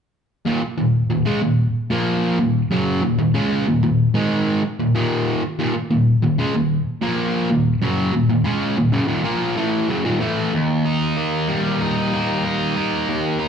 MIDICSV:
0, 0, Header, 1, 3, 480
1, 0, Start_track
1, 0, Tempo, 640342
1, 214, Time_signature, 4, 2, 24, 8
1, 10106, End_track
2, 0, Start_track
2, 0, Title_t, "Distorted electric guitar"
2, 0, Program_c, 0, 30
2, 339, Note_on_c, 0, 39, 72
2, 349, Note_on_c, 0, 46, 78
2, 451, Note_off_c, 0, 39, 0
2, 455, Note_off_c, 0, 46, 0
2, 581, Note_on_c, 0, 39, 61
2, 584, Note_on_c, 0, 46, 56
2, 772, Note_off_c, 0, 39, 0
2, 773, Note_off_c, 0, 46, 0
2, 826, Note_on_c, 0, 39, 59
2, 830, Note_on_c, 0, 46, 62
2, 940, Note_off_c, 0, 46, 0
2, 942, Note_off_c, 0, 39, 0
2, 943, Note_on_c, 0, 49, 90
2, 948, Note_on_c, 0, 56, 86
2, 1053, Note_off_c, 0, 49, 0
2, 1056, Note_off_c, 0, 56, 0
2, 1068, Note_on_c, 0, 39, 60
2, 1068, Note_on_c, 0, 46, 70
2, 1256, Note_off_c, 0, 39, 0
2, 1256, Note_off_c, 0, 46, 0
2, 1426, Note_on_c, 0, 46, 78
2, 1434, Note_on_c, 0, 53, 108
2, 1436, Note_on_c, 0, 58, 98
2, 1777, Note_off_c, 0, 46, 0
2, 1781, Note_off_c, 0, 53, 0
2, 1782, Note_off_c, 0, 58, 0
2, 1786, Note_on_c, 0, 39, 63
2, 1792, Note_on_c, 0, 46, 67
2, 1976, Note_off_c, 0, 39, 0
2, 1979, Note_off_c, 0, 46, 0
2, 2029, Note_on_c, 0, 42, 78
2, 2034, Note_on_c, 0, 49, 77
2, 2039, Note_on_c, 0, 54, 90
2, 2259, Note_off_c, 0, 42, 0
2, 2261, Note_off_c, 0, 49, 0
2, 2264, Note_off_c, 0, 54, 0
2, 2268, Note_on_c, 0, 39, 49
2, 2272, Note_on_c, 0, 46, 66
2, 2380, Note_off_c, 0, 39, 0
2, 2381, Note_off_c, 0, 46, 0
2, 2389, Note_on_c, 0, 39, 58
2, 2390, Note_on_c, 0, 46, 67
2, 2502, Note_off_c, 0, 46, 0
2, 2505, Note_on_c, 0, 49, 80
2, 2506, Note_off_c, 0, 39, 0
2, 2512, Note_on_c, 0, 56, 91
2, 2516, Note_on_c, 0, 61, 89
2, 2737, Note_off_c, 0, 49, 0
2, 2741, Note_off_c, 0, 56, 0
2, 2743, Note_off_c, 0, 61, 0
2, 2755, Note_on_c, 0, 39, 53
2, 2757, Note_on_c, 0, 46, 62
2, 2862, Note_off_c, 0, 39, 0
2, 2863, Note_off_c, 0, 46, 0
2, 2871, Note_on_c, 0, 39, 59
2, 2872, Note_on_c, 0, 46, 77
2, 3060, Note_off_c, 0, 39, 0
2, 3060, Note_off_c, 0, 46, 0
2, 3105, Note_on_c, 0, 44, 96
2, 3109, Note_on_c, 0, 51, 89
2, 3116, Note_on_c, 0, 56, 92
2, 3458, Note_off_c, 0, 44, 0
2, 3460, Note_off_c, 0, 51, 0
2, 3463, Note_off_c, 0, 56, 0
2, 3594, Note_on_c, 0, 39, 57
2, 3594, Note_on_c, 0, 46, 61
2, 3699, Note_off_c, 0, 39, 0
2, 3703, Note_off_c, 0, 46, 0
2, 3708, Note_on_c, 0, 39, 81
2, 3712, Note_on_c, 0, 46, 92
2, 3714, Note_on_c, 0, 51, 92
2, 4059, Note_off_c, 0, 39, 0
2, 4061, Note_off_c, 0, 46, 0
2, 4062, Note_off_c, 0, 51, 0
2, 4188, Note_on_c, 0, 39, 79
2, 4194, Note_on_c, 0, 46, 91
2, 4299, Note_off_c, 0, 39, 0
2, 4302, Note_off_c, 0, 46, 0
2, 4427, Note_on_c, 0, 39, 59
2, 4430, Note_on_c, 0, 46, 61
2, 4617, Note_off_c, 0, 39, 0
2, 4619, Note_off_c, 0, 46, 0
2, 4665, Note_on_c, 0, 39, 62
2, 4670, Note_on_c, 0, 46, 62
2, 4782, Note_off_c, 0, 46, 0
2, 4784, Note_off_c, 0, 39, 0
2, 4785, Note_on_c, 0, 49, 83
2, 4791, Note_on_c, 0, 56, 104
2, 4897, Note_off_c, 0, 49, 0
2, 4900, Note_off_c, 0, 56, 0
2, 4906, Note_on_c, 0, 39, 59
2, 4907, Note_on_c, 0, 46, 73
2, 5097, Note_off_c, 0, 39, 0
2, 5097, Note_off_c, 0, 46, 0
2, 5260, Note_on_c, 0, 46, 84
2, 5266, Note_on_c, 0, 53, 92
2, 5270, Note_on_c, 0, 58, 111
2, 5613, Note_off_c, 0, 46, 0
2, 5616, Note_off_c, 0, 53, 0
2, 5618, Note_off_c, 0, 58, 0
2, 5620, Note_on_c, 0, 39, 56
2, 5623, Note_on_c, 0, 46, 62
2, 5812, Note_off_c, 0, 39, 0
2, 5814, Note_off_c, 0, 46, 0
2, 5859, Note_on_c, 0, 42, 88
2, 5868, Note_on_c, 0, 49, 76
2, 5870, Note_on_c, 0, 54, 96
2, 6092, Note_off_c, 0, 42, 0
2, 6095, Note_on_c, 0, 39, 51
2, 6097, Note_off_c, 0, 49, 0
2, 6098, Note_off_c, 0, 54, 0
2, 6101, Note_on_c, 0, 46, 61
2, 6209, Note_off_c, 0, 39, 0
2, 6210, Note_off_c, 0, 46, 0
2, 6218, Note_on_c, 0, 39, 68
2, 6219, Note_on_c, 0, 46, 68
2, 6327, Note_off_c, 0, 46, 0
2, 6330, Note_on_c, 0, 49, 73
2, 6338, Note_on_c, 0, 56, 79
2, 6339, Note_off_c, 0, 39, 0
2, 6343, Note_on_c, 0, 61, 85
2, 6567, Note_off_c, 0, 49, 0
2, 6571, Note_off_c, 0, 56, 0
2, 6574, Note_off_c, 0, 61, 0
2, 6575, Note_on_c, 0, 39, 60
2, 6578, Note_on_c, 0, 46, 62
2, 6684, Note_off_c, 0, 39, 0
2, 6687, Note_on_c, 0, 42, 80
2, 6692, Note_off_c, 0, 46, 0
2, 6695, Note_on_c, 0, 49, 92
2, 6799, Note_off_c, 0, 42, 0
2, 6802, Note_on_c, 0, 39, 80
2, 6804, Note_off_c, 0, 49, 0
2, 6807, Note_on_c, 0, 46, 95
2, 6916, Note_off_c, 0, 46, 0
2, 6923, Note_off_c, 0, 39, 0
2, 6925, Note_on_c, 0, 46, 94
2, 6933, Note_on_c, 0, 53, 92
2, 6937, Note_on_c, 0, 58, 95
2, 7164, Note_off_c, 0, 46, 0
2, 7168, Note_off_c, 0, 53, 0
2, 7169, Note_on_c, 0, 45, 97
2, 7170, Note_off_c, 0, 58, 0
2, 7175, Note_on_c, 0, 52, 92
2, 7177, Note_on_c, 0, 57, 93
2, 7406, Note_off_c, 0, 45, 0
2, 7409, Note_off_c, 0, 52, 0
2, 7409, Note_off_c, 0, 57, 0
2, 7410, Note_on_c, 0, 42, 86
2, 7420, Note_on_c, 0, 49, 103
2, 7523, Note_off_c, 0, 42, 0
2, 7526, Note_on_c, 0, 39, 85
2, 7531, Note_off_c, 0, 49, 0
2, 7534, Note_on_c, 0, 46, 91
2, 7644, Note_off_c, 0, 39, 0
2, 7645, Note_off_c, 0, 46, 0
2, 7648, Note_on_c, 0, 45, 77
2, 7651, Note_on_c, 0, 52, 92
2, 7657, Note_on_c, 0, 57, 94
2, 7885, Note_off_c, 0, 45, 0
2, 7886, Note_off_c, 0, 52, 0
2, 7889, Note_off_c, 0, 57, 0
2, 7892, Note_on_c, 0, 39, 65
2, 8137, Note_on_c, 0, 63, 65
2, 8372, Note_on_c, 0, 58, 59
2, 8606, Note_on_c, 0, 55, 62
2, 8849, Note_off_c, 0, 63, 0
2, 8852, Note_on_c, 0, 63, 76
2, 9084, Note_off_c, 0, 58, 0
2, 9091, Note_off_c, 0, 39, 0
2, 9093, Note_on_c, 0, 58, 62
2, 9326, Note_off_c, 0, 63, 0
2, 9329, Note_on_c, 0, 63, 64
2, 9559, Note_off_c, 0, 58, 0
2, 9568, Note_on_c, 0, 58, 55
2, 9808, Note_off_c, 0, 55, 0
2, 9810, Note_on_c, 0, 39, 60
2, 10042, Note_off_c, 0, 63, 0
2, 10045, Note_on_c, 0, 63, 65
2, 10106, Note_off_c, 0, 39, 0
2, 10106, Note_off_c, 0, 58, 0
2, 10106, Note_off_c, 0, 63, 0
2, 10106, End_track
3, 0, Start_track
3, 0, Title_t, "Muted distorted electric guitar strokes"
3, 464, Note_on_c, 9, 29, 55
3, 539, Note_off_c, 9, 29, 0
3, 3467, Note_on_c, 9, 29, 51
3, 3542, Note_off_c, 9, 29, 0
3, 4308, Note_on_c, 9, 29, 55
3, 4383, Note_off_c, 9, 29, 0
3, 10106, End_track
0, 0, End_of_file